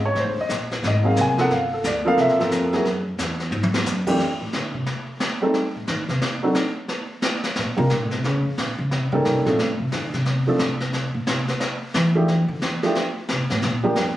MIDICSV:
0, 0, Header, 1, 4, 480
1, 0, Start_track
1, 0, Tempo, 336700
1, 231, Time_signature, 4, 2, 24, 8
1, 20199, End_track
2, 0, Start_track
2, 0, Title_t, "Upright piano"
2, 0, Program_c, 0, 0
2, 79, Note_on_c, 0, 73, 82
2, 237, Note_off_c, 0, 73, 0
2, 283, Note_on_c, 0, 72, 81
2, 553, Note_off_c, 0, 72, 0
2, 580, Note_on_c, 0, 75, 86
2, 672, Note_off_c, 0, 75, 0
2, 1244, Note_on_c, 0, 75, 81
2, 1476, Note_on_c, 0, 54, 61
2, 1491, Note_on_c, 0, 58, 56
2, 1498, Note_on_c, 0, 60, 60
2, 1503, Note_on_c, 0, 68, 66
2, 1512, Note_off_c, 0, 75, 0
2, 1524, Note_on_c, 0, 77, 85
2, 1679, Note_off_c, 0, 77, 0
2, 1727, Note_on_c, 0, 80, 93
2, 1933, Note_off_c, 0, 54, 0
2, 1940, Note_off_c, 0, 58, 0
2, 1944, Note_off_c, 0, 60, 0
2, 1947, Note_off_c, 0, 68, 0
2, 1962, Note_on_c, 0, 53, 77
2, 1972, Note_on_c, 0, 58, 71
2, 1977, Note_on_c, 0, 60, 67
2, 1982, Note_on_c, 0, 69, 87
2, 1993, Note_off_c, 0, 80, 0
2, 2007, Note_on_c, 0, 78, 99
2, 2125, Note_off_c, 0, 53, 0
2, 2130, Note_off_c, 0, 58, 0
2, 2132, Note_off_c, 0, 60, 0
2, 2135, Note_off_c, 0, 69, 0
2, 2160, Note_off_c, 0, 78, 0
2, 2184, Note_on_c, 0, 77, 80
2, 2461, Note_off_c, 0, 77, 0
2, 2472, Note_on_c, 0, 69, 64
2, 2632, Note_off_c, 0, 69, 0
2, 2663, Note_on_c, 0, 74, 86
2, 2919, Note_on_c, 0, 53, 78
2, 2929, Note_on_c, 0, 58, 73
2, 2935, Note_on_c, 0, 60, 75
2, 2940, Note_off_c, 0, 74, 0
2, 2944, Note_on_c, 0, 69, 87
2, 2962, Note_on_c, 0, 77, 117
2, 3117, Note_off_c, 0, 77, 0
2, 3145, Note_on_c, 0, 76, 90
2, 3374, Note_off_c, 0, 53, 0
2, 3379, Note_off_c, 0, 58, 0
2, 3381, Note_off_c, 0, 60, 0
2, 3386, Note_off_c, 0, 69, 0
2, 3411, Note_on_c, 0, 53, 74
2, 3421, Note_on_c, 0, 58, 67
2, 3426, Note_on_c, 0, 60, 68
2, 3432, Note_on_c, 0, 69, 83
2, 3573, Note_off_c, 0, 76, 0
2, 3859, Note_off_c, 0, 53, 0
2, 3864, Note_off_c, 0, 58, 0
2, 3867, Note_off_c, 0, 60, 0
2, 3870, Note_off_c, 0, 69, 0
2, 3891, Note_on_c, 0, 54, 66
2, 3896, Note_on_c, 0, 58, 63
2, 3908, Note_on_c, 0, 68, 73
2, 3909, Note_on_c, 0, 64, 61
2, 4048, Note_off_c, 0, 54, 0
2, 4050, Note_off_c, 0, 58, 0
2, 4056, Note_off_c, 0, 68, 0
2, 4057, Note_off_c, 0, 64, 0
2, 5802, Note_on_c, 0, 41, 78
2, 5812, Note_on_c, 0, 52, 69
2, 5813, Note_on_c, 0, 62, 70
2, 5814, Note_on_c, 0, 57, 67
2, 5820, Note_on_c, 0, 67, 85
2, 5962, Note_off_c, 0, 41, 0
2, 5967, Note_off_c, 0, 52, 0
2, 5968, Note_off_c, 0, 57, 0
2, 5968, Note_off_c, 0, 62, 0
2, 5971, Note_off_c, 0, 67, 0
2, 7724, Note_on_c, 0, 55, 59
2, 7732, Note_on_c, 0, 57, 55
2, 7736, Note_on_c, 0, 60, 52
2, 7741, Note_on_c, 0, 63, 56
2, 7746, Note_on_c, 0, 69, 66
2, 7883, Note_off_c, 0, 55, 0
2, 7887, Note_off_c, 0, 57, 0
2, 7889, Note_off_c, 0, 60, 0
2, 7891, Note_off_c, 0, 63, 0
2, 7894, Note_off_c, 0, 69, 0
2, 9163, Note_on_c, 0, 54, 59
2, 9167, Note_on_c, 0, 60, 55
2, 9171, Note_on_c, 0, 62, 52
2, 9183, Note_on_c, 0, 63, 54
2, 9184, Note_on_c, 0, 69, 61
2, 9322, Note_off_c, 0, 54, 0
2, 9324, Note_off_c, 0, 60, 0
2, 9326, Note_off_c, 0, 62, 0
2, 9332, Note_off_c, 0, 63, 0
2, 9333, Note_off_c, 0, 69, 0
2, 11072, Note_on_c, 0, 55, 54
2, 11080, Note_on_c, 0, 58, 54
2, 11087, Note_on_c, 0, 62, 52
2, 11090, Note_on_c, 0, 65, 53
2, 11100, Note_on_c, 0, 70, 64
2, 11237, Note_off_c, 0, 55, 0
2, 11241, Note_off_c, 0, 58, 0
2, 11244, Note_off_c, 0, 62, 0
2, 11246, Note_off_c, 0, 65, 0
2, 11251, Note_off_c, 0, 70, 0
2, 13010, Note_on_c, 0, 55, 64
2, 13018, Note_on_c, 0, 61, 51
2, 13019, Note_on_c, 0, 58, 57
2, 13026, Note_on_c, 0, 63, 55
2, 13030, Note_on_c, 0, 69, 64
2, 13458, Note_off_c, 0, 55, 0
2, 13462, Note_off_c, 0, 58, 0
2, 13462, Note_off_c, 0, 61, 0
2, 13466, Note_off_c, 0, 63, 0
2, 13468, Note_off_c, 0, 69, 0
2, 13482, Note_on_c, 0, 53, 56
2, 13491, Note_on_c, 0, 57, 55
2, 13493, Note_on_c, 0, 60, 53
2, 13499, Note_on_c, 0, 62, 55
2, 13503, Note_on_c, 0, 69, 67
2, 13642, Note_off_c, 0, 53, 0
2, 13646, Note_off_c, 0, 57, 0
2, 13648, Note_off_c, 0, 60, 0
2, 13651, Note_off_c, 0, 62, 0
2, 13653, Note_off_c, 0, 69, 0
2, 14926, Note_on_c, 0, 53, 61
2, 14938, Note_on_c, 0, 57, 56
2, 14943, Note_on_c, 0, 60, 57
2, 14944, Note_on_c, 0, 62, 59
2, 14951, Note_on_c, 0, 69, 72
2, 15084, Note_off_c, 0, 53, 0
2, 15090, Note_off_c, 0, 57, 0
2, 15093, Note_off_c, 0, 60, 0
2, 15093, Note_off_c, 0, 62, 0
2, 15097, Note_off_c, 0, 69, 0
2, 17323, Note_on_c, 0, 53, 62
2, 17325, Note_on_c, 0, 57, 53
2, 17331, Note_on_c, 0, 62, 58
2, 17336, Note_on_c, 0, 64, 57
2, 17343, Note_on_c, 0, 67, 69
2, 17484, Note_off_c, 0, 53, 0
2, 17484, Note_off_c, 0, 57, 0
2, 17487, Note_off_c, 0, 62, 0
2, 17490, Note_off_c, 0, 64, 0
2, 17493, Note_off_c, 0, 67, 0
2, 18287, Note_on_c, 0, 53, 69
2, 18292, Note_on_c, 0, 57, 65
2, 18299, Note_on_c, 0, 62, 61
2, 18304, Note_on_c, 0, 64, 59
2, 18307, Note_on_c, 0, 67, 73
2, 18445, Note_off_c, 0, 53, 0
2, 18448, Note_off_c, 0, 57, 0
2, 18452, Note_off_c, 0, 62, 0
2, 18454, Note_off_c, 0, 64, 0
2, 18456, Note_off_c, 0, 67, 0
2, 19720, Note_on_c, 0, 53, 70
2, 19724, Note_on_c, 0, 55, 60
2, 19733, Note_on_c, 0, 58, 62
2, 19736, Note_on_c, 0, 62, 64
2, 19741, Note_on_c, 0, 67, 73
2, 19883, Note_off_c, 0, 53, 0
2, 19885, Note_off_c, 0, 55, 0
2, 19889, Note_off_c, 0, 58, 0
2, 19890, Note_off_c, 0, 62, 0
2, 19893, Note_off_c, 0, 67, 0
2, 20199, End_track
3, 0, Start_track
3, 0, Title_t, "Upright bass"
3, 0, Program_c, 1, 32
3, 0, Note_on_c, 1, 32, 81
3, 208, Note_off_c, 1, 32, 0
3, 214, Note_on_c, 1, 33, 82
3, 366, Note_off_c, 1, 33, 0
3, 366, Note_on_c, 1, 31, 58
3, 517, Note_off_c, 1, 31, 0
3, 526, Note_on_c, 1, 27, 66
3, 686, Note_off_c, 1, 27, 0
3, 698, Note_on_c, 1, 34, 83
3, 1168, Note_off_c, 1, 34, 0
3, 1180, Note_on_c, 1, 32, 91
3, 1649, Note_off_c, 1, 32, 0
3, 1657, Note_on_c, 1, 36, 89
3, 2127, Note_off_c, 1, 36, 0
3, 2135, Note_on_c, 1, 31, 84
3, 2606, Note_off_c, 1, 31, 0
3, 2616, Note_on_c, 1, 38, 84
3, 3086, Note_off_c, 1, 38, 0
3, 3094, Note_on_c, 1, 36, 87
3, 3248, Note_off_c, 1, 36, 0
3, 3248, Note_on_c, 1, 34, 59
3, 3391, Note_off_c, 1, 34, 0
3, 3399, Note_on_c, 1, 31, 73
3, 3560, Note_off_c, 1, 31, 0
3, 3572, Note_on_c, 1, 41, 94
3, 4043, Note_off_c, 1, 41, 0
3, 4054, Note_on_c, 1, 42, 83
3, 4524, Note_off_c, 1, 42, 0
3, 4539, Note_on_c, 1, 40, 92
3, 4993, Note_off_c, 1, 40, 0
3, 5002, Note_on_c, 1, 44, 87
3, 5473, Note_off_c, 1, 44, 0
3, 5482, Note_on_c, 1, 42, 93
3, 5957, Note_off_c, 1, 42, 0
3, 6285, Note_on_c, 1, 45, 67
3, 6456, Note_off_c, 1, 45, 0
3, 6478, Note_on_c, 1, 50, 77
3, 6751, Note_off_c, 1, 50, 0
3, 6760, Note_on_c, 1, 48, 75
3, 6933, Note_off_c, 1, 48, 0
3, 8204, Note_on_c, 1, 45, 56
3, 8375, Note_off_c, 1, 45, 0
3, 8397, Note_on_c, 1, 51, 85
3, 8667, Note_off_c, 1, 51, 0
3, 8675, Note_on_c, 1, 48, 83
3, 8784, Note_off_c, 1, 48, 0
3, 10811, Note_on_c, 1, 46, 72
3, 11076, Note_off_c, 1, 46, 0
3, 11085, Note_on_c, 1, 48, 108
3, 11279, Note_off_c, 1, 48, 0
3, 11279, Note_on_c, 1, 46, 77
3, 11434, Note_off_c, 1, 46, 0
3, 11434, Note_on_c, 1, 45, 71
3, 11597, Note_off_c, 1, 45, 0
3, 11597, Note_on_c, 1, 48, 78
3, 11767, Note_off_c, 1, 48, 0
3, 11767, Note_on_c, 1, 49, 81
3, 12034, Note_off_c, 1, 49, 0
3, 12042, Note_on_c, 1, 41, 60
3, 12214, Note_off_c, 1, 41, 0
3, 12241, Note_on_c, 1, 46, 69
3, 12515, Note_off_c, 1, 46, 0
3, 12523, Note_on_c, 1, 49, 92
3, 12721, Note_off_c, 1, 49, 0
3, 12721, Note_on_c, 1, 48, 83
3, 12994, Note_off_c, 1, 48, 0
3, 13002, Note_on_c, 1, 49, 96
3, 13174, Note_off_c, 1, 49, 0
3, 13208, Note_on_c, 1, 48, 77
3, 13470, Note_off_c, 1, 48, 0
3, 13479, Note_on_c, 1, 46, 82
3, 13680, Note_off_c, 1, 46, 0
3, 13680, Note_on_c, 1, 45, 76
3, 13952, Note_off_c, 1, 45, 0
3, 13960, Note_on_c, 1, 48, 81
3, 14133, Note_off_c, 1, 48, 0
3, 14165, Note_on_c, 1, 50, 80
3, 14440, Note_off_c, 1, 50, 0
3, 14449, Note_on_c, 1, 48, 86
3, 14894, Note_off_c, 1, 48, 0
3, 15126, Note_on_c, 1, 48, 72
3, 15845, Note_off_c, 1, 48, 0
3, 15885, Note_on_c, 1, 46, 78
3, 16057, Note_off_c, 1, 46, 0
3, 16086, Note_on_c, 1, 48, 70
3, 16370, Note_off_c, 1, 48, 0
3, 17040, Note_on_c, 1, 52, 101
3, 17762, Note_off_c, 1, 52, 0
3, 17799, Note_on_c, 1, 50, 96
3, 17974, Note_off_c, 1, 50, 0
3, 17999, Note_on_c, 1, 52, 85
3, 18177, Note_off_c, 1, 52, 0
3, 18966, Note_on_c, 1, 48, 82
3, 19251, Note_off_c, 1, 48, 0
3, 19262, Note_on_c, 1, 45, 89
3, 19426, Note_off_c, 1, 45, 0
3, 19451, Note_on_c, 1, 46, 96
3, 19729, Note_off_c, 1, 46, 0
3, 19737, Note_on_c, 1, 38, 68
3, 19904, Note_off_c, 1, 38, 0
3, 19927, Note_on_c, 1, 41, 73
3, 20199, Note_off_c, 1, 41, 0
3, 20199, End_track
4, 0, Start_track
4, 0, Title_t, "Drums"
4, 220, Note_on_c, 9, 25, 53
4, 220, Note_on_c, 9, 38, 46
4, 222, Note_on_c, 9, 36, 24
4, 362, Note_off_c, 9, 38, 0
4, 365, Note_off_c, 9, 36, 0
4, 702, Note_on_c, 9, 36, 27
4, 704, Note_on_c, 9, 38, 62
4, 706, Note_on_c, 9, 44, 55
4, 845, Note_off_c, 9, 36, 0
4, 847, Note_off_c, 9, 38, 0
4, 848, Note_off_c, 9, 44, 0
4, 1017, Note_on_c, 9, 38, 43
4, 1159, Note_off_c, 9, 38, 0
4, 1184, Note_on_c, 9, 36, 24
4, 1190, Note_off_c, 9, 25, 0
4, 1190, Note_on_c, 9, 25, 50
4, 1190, Note_on_c, 9, 38, 49
4, 1326, Note_off_c, 9, 36, 0
4, 1332, Note_off_c, 9, 38, 0
4, 1659, Note_on_c, 9, 38, 69
4, 1660, Note_on_c, 9, 44, 53
4, 1802, Note_off_c, 9, 38, 0
4, 1803, Note_off_c, 9, 44, 0
4, 1965, Note_on_c, 9, 38, 44
4, 2108, Note_off_c, 9, 38, 0
4, 2142, Note_on_c, 9, 36, 20
4, 2145, Note_off_c, 9, 25, 0
4, 2145, Note_on_c, 9, 25, 51
4, 2145, Note_on_c, 9, 38, 47
4, 2285, Note_off_c, 9, 36, 0
4, 2288, Note_off_c, 9, 38, 0
4, 2621, Note_on_c, 9, 36, 20
4, 2623, Note_on_c, 9, 38, 64
4, 2625, Note_on_c, 9, 44, 53
4, 2764, Note_off_c, 9, 36, 0
4, 2766, Note_off_c, 9, 38, 0
4, 2767, Note_off_c, 9, 44, 0
4, 3101, Note_on_c, 9, 36, 26
4, 3102, Note_off_c, 9, 25, 0
4, 3102, Note_on_c, 9, 25, 54
4, 3102, Note_on_c, 9, 38, 50
4, 3244, Note_off_c, 9, 36, 0
4, 3244, Note_off_c, 9, 38, 0
4, 3262, Note_on_c, 9, 38, 30
4, 3404, Note_off_c, 9, 38, 0
4, 3422, Note_on_c, 9, 38, 49
4, 3565, Note_off_c, 9, 38, 0
4, 3581, Note_on_c, 9, 36, 25
4, 3582, Note_on_c, 9, 38, 68
4, 3583, Note_on_c, 9, 44, 53
4, 3724, Note_off_c, 9, 36, 0
4, 3724, Note_off_c, 9, 38, 0
4, 3726, Note_off_c, 9, 44, 0
4, 3887, Note_on_c, 9, 38, 44
4, 4030, Note_off_c, 9, 38, 0
4, 4062, Note_on_c, 9, 36, 25
4, 4065, Note_off_c, 9, 25, 0
4, 4065, Note_on_c, 9, 25, 55
4, 4065, Note_on_c, 9, 38, 47
4, 4204, Note_off_c, 9, 36, 0
4, 4207, Note_off_c, 9, 38, 0
4, 4540, Note_on_c, 9, 36, 19
4, 4542, Note_on_c, 9, 38, 66
4, 4543, Note_on_c, 9, 44, 55
4, 4682, Note_off_c, 9, 36, 0
4, 4685, Note_off_c, 9, 38, 0
4, 4686, Note_off_c, 9, 44, 0
4, 4841, Note_on_c, 9, 38, 42
4, 4984, Note_off_c, 9, 38, 0
4, 5015, Note_on_c, 9, 48, 57
4, 5158, Note_off_c, 9, 48, 0
4, 5176, Note_on_c, 9, 47, 67
4, 5318, Note_off_c, 9, 47, 0
4, 5330, Note_on_c, 9, 38, 88
4, 5472, Note_off_c, 9, 38, 0
4, 5502, Note_on_c, 9, 38, 59
4, 5503, Note_on_c, 9, 44, 62
4, 5645, Note_off_c, 9, 38, 0
4, 5646, Note_off_c, 9, 44, 0
4, 5799, Note_on_c, 9, 49, 84
4, 5800, Note_on_c, 9, 36, 77
4, 5942, Note_off_c, 9, 49, 0
4, 5943, Note_off_c, 9, 36, 0
4, 5972, Note_off_c, 9, 25, 0
4, 5972, Note_on_c, 9, 25, 47
4, 5972, Note_on_c, 9, 38, 43
4, 6114, Note_off_c, 9, 38, 0
4, 6457, Note_on_c, 9, 38, 58
4, 6600, Note_off_c, 9, 38, 0
4, 6935, Note_off_c, 9, 25, 0
4, 6935, Note_on_c, 9, 25, 49
4, 6935, Note_on_c, 9, 38, 48
4, 7077, Note_off_c, 9, 38, 0
4, 7415, Note_on_c, 9, 38, 64
4, 7557, Note_off_c, 9, 38, 0
4, 7894, Note_off_c, 9, 25, 0
4, 7894, Note_on_c, 9, 25, 47
4, 7894, Note_on_c, 9, 38, 46
4, 8037, Note_off_c, 9, 38, 0
4, 8375, Note_on_c, 9, 38, 63
4, 8518, Note_off_c, 9, 38, 0
4, 8682, Note_on_c, 9, 38, 40
4, 8824, Note_off_c, 9, 38, 0
4, 8860, Note_off_c, 9, 25, 0
4, 8860, Note_on_c, 9, 25, 43
4, 8860, Note_on_c, 9, 38, 46
4, 9003, Note_off_c, 9, 38, 0
4, 9334, Note_on_c, 9, 38, 63
4, 9477, Note_off_c, 9, 38, 0
4, 9814, Note_off_c, 9, 25, 0
4, 9814, Note_on_c, 9, 25, 42
4, 9814, Note_on_c, 9, 38, 43
4, 9956, Note_off_c, 9, 38, 0
4, 10293, Note_on_c, 9, 38, 64
4, 10436, Note_off_c, 9, 38, 0
4, 10599, Note_on_c, 9, 38, 42
4, 10742, Note_off_c, 9, 38, 0
4, 10770, Note_off_c, 9, 25, 0
4, 10770, Note_on_c, 9, 25, 55
4, 10770, Note_on_c, 9, 38, 51
4, 10912, Note_off_c, 9, 38, 0
4, 11259, Note_on_c, 9, 38, 62
4, 11402, Note_off_c, 9, 38, 0
4, 11562, Note_on_c, 9, 38, 41
4, 11704, Note_off_c, 9, 38, 0
4, 11745, Note_off_c, 9, 25, 0
4, 11745, Note_on_c, 9, 25, 52
4, 11745, Note_on_c, 9, 38, 43
4, 11887, Note_off_c, 9, 38, 0
4, 12227, Note_on_c, 9, 38, 63
4, 12370, Note_off_c, 9, 38, 0
4, 12707, Note_off_c, 9, 25, 0
4, 12707, Note_on_c, 9, 25, 49
4, 12707, Note_on_c, 9, 38, 46
4, 12849, Note_off_c, 9, 38, 0
4, 13187, Note_on_c, 9, 38, 62
4, 13330, Note_off_c, 9, 38, 0
4, 13492, Note_on_c, 9, 38, 41
4, 13634, Note_off_c, 9, 38, 0
4, 13669, Note_off_c, 9, 25, 0
4, 13669, Note_on_c, 9, 25, 51
4, 13669, Note_on_c, 9, 38, 47
4, 13811, Note_off_c, 9, 38, 0
4, 14142, Note_on_c, 9, 38, 66
4, 14284, Note_off_c, 9, 38, 0
4, 14448, Note_on_c, 9, 38, 41
4, 14590, Note_off_c, 9, 38, 0
4, 14620, Note_off_c, 9, 25, 0
4, 14620, Note_on_c, 9, 25, 52
4, 14620, Note_on_c, 9, 38, 47
4, 14762, Note_off_c, 9, 38, 0
4, 15100, Note_on_c, 9, 38, 68
4, 15243, Note_off_c, 9, 38, 0
4, 15402, Note_on_c, 9, 38, 40
4, 15544, Note_off_c, 9, 38, 0
4, 15582, Note_off_c, 9, 25, 0
4, 15582, Note_on_c, 9, 25, 54
4, 15582, Note_on_c, 9, 38, 45
4, 15724, Note_off_c, 9, 38, 0
4, 16064, Note_on_c, 9, 38, 65
4, 16207, Note_off_c, 9, 38, 0
4, 16367, Note_on_c, 9, 38, 42
4, 16509, Note_off_c, 9, 38, 0
4, 16541, Note_off_c, 9, 25, 0
4, 16541, Note_on_c, 9, 25, 55
4, 16541, Note_on_c, 9, 38, 49
4, 16684, Note_off_c, 9, 38, 0
4, 17024, Note_on_c, 9, 38, 67
4, 17166, Note_off_c, 9, 38, 0
4, 17509, Note_off_c, 9, 25, 0
4, 17509, Note_on_c, 9, 25, 50
4, 17509, Note_on_c, 9, 38, 51
4, 17651, Note_off_c, 9, 38, 0
4, 17987, Note_on_c, 9, 38, 67
4, 18129, Note_off_c, 9, 38, 0
4, 18287, Note_on_c, 9, 38, 42
4, 18429, Note_off_c, 9, 38, 0
4, 18464, Note_off_c, 9, 25, 0
4, 18464, Note_on_c, 9, 25, 48
4, 18464, Note_on_c, 9, 38, 53
4, 18607, Note_off_c, 9, 38, 0
4, 18940, Note_on_c, 9, 38, 66
4, 19082, Note_off_c, 9, 38, 0
4, 19244, Note_on_c, 9, 38, 45
4, 19387, Note_off_c, 9, 38, 0
4, 19414, Note_off_c, 9, 25, 0
4, 19414, Note_on_c, 9, 25, 47
4, 19414, Note_on_c, 9, 38, 46
4, 19556, Note_off_c, 9, 38, 0
4, 19897, Note_on_c, 9, 38, 65
4, 20039, Note_off_c, 9, 38, 0
4, 20199, Note_off_c, 9, 25, 0
4, 20199, End_track
0, 0, End_of_file